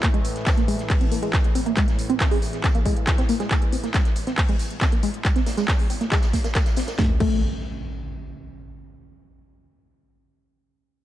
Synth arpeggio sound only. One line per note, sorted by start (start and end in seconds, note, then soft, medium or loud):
0.03 0.08 A#3 medium
0.14 0.22 G#3 loud
0.46 0.52 C4 medium
0.57 0.63 A#3 medium
0.68 0.76 G#3 loud
1.01 1.06 C4 medium
1.12 1.17 A#3 medium
1.23 1.30 G#3 loud
1.55 1.60 C4 medium
1.66 1.71 A#3 medium
1.77 1.85 G#3 loud
2.10 2.15 C4 medium
2.20 2.26 A#3 medium
2.31 2.39 G#3 loud
2.64 2.69 C4 medium
2.75 2.80 A#3 medium
2.86 2.94 G#3 loud
3.18 3.24 C4 medium
3.29 3.34 A#3 medium
3.40 3.48 G#3 loud
3.73 3.78 C4 medium
3.84 3.89 A#3 medium
3.94 4.02 G#3 loud
4.27 4.32 C4 medium
4.38 4.43 A#3 medium
4.49 4.57 G#3 loud
4.81 4.87 C4 medium
4.92 4.97 A#3 medium
5.03 5.11 G#3 loud
5.36 5.41 C4 medium
5.46 5.52 A#3 medium
5.57 5.65 G#3 loud
5.90 5.95 C4 medium
6.01 6.06 A#3 medium
6.12 6.20 G#3 loud
6.34 6.39 A#3 medium
6.44 6.48 A#3 medium
6.55 6.61 A#3 loud
6.77 6.82 C4 loud
6.88 6.93 A#4 medium
6.99 7.11 A3 medium
7.20 7.41 A3 medium